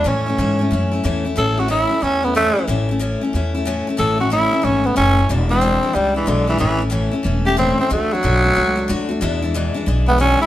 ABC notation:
X:1
M:4/4
L:1/8
Q:"Swing" 1/4=184
K:A
V:1 name="Tenor saxophone"
C6 z2 | A F E2 C B, A,2 | z8 | A F E2 C B, C2 |
z =C3 =G, E, D, E, | E, z4 =G =C C | A, F,6 z | z4 z B, C E |]
V:2 name="Steel-string acoustic guitar"
[A,,E,A,CE] [A,CE] [A,,E,A,CE] [A,CE] [E,A,CE] [A,CE] [A,,E,A,CE] [A,CE] | [A,,E,A,CE] [A,CE] [A,,E,A,CE] [A,CE] [E,A,CE] [A,CE] [A,,E,A,CE] [A,CE] | [A,,E,A,CE] [A,CE] [A,,E,A,CE] [A,CE] [E,A,CE] [A,CE] [A,,E,A,CE] [A,CE] | [A,,E,A,CE] [A,CE] [A,,E,A,CE] [A,CE] [E,A,CE] [A,CE] [A,,E,A,CE] [A,CE] |
[E,,B,,E,G,DE] [E,G,DE] [E,,B,,E,G,DE] [E,G,DE] [E,G,DE] [E,G,DE] [E,,B,,E,G,DE] [E,G,DE] | [A,,E,A,CE] [A,CE] [A,,E,A,CE] [A,CE] [E,A,CE] [A,CE] [A,,E,A,CE] [A,CE] | [D,A,DF] [A,DF] [D,A,DF] [A,DF] [D,A,DF] [A,DF] [D,A,DF] [A,DF] | [E,,B,,E,G,DE] [E,G,DE] [E,,B,,E,G,DE] [E,G,DE] [E,G,DE] [E,G,DE] [E,,B,,E,G,DE] [E,G,DE] |]
V:3 name="Upright bass" clef=bass
A,,2 G,,2 F,,2 E,,2 | A,,,4 E,,4 | A,,,4 E,,4 | A,,,4 G,,,2 F,,,2 |
E,,,4 C,,2 B,,,2 | A,,,4 E,,,4 | D,,2 B,,,2 C,,2 D,,2 | E,,4 B,,,4 |]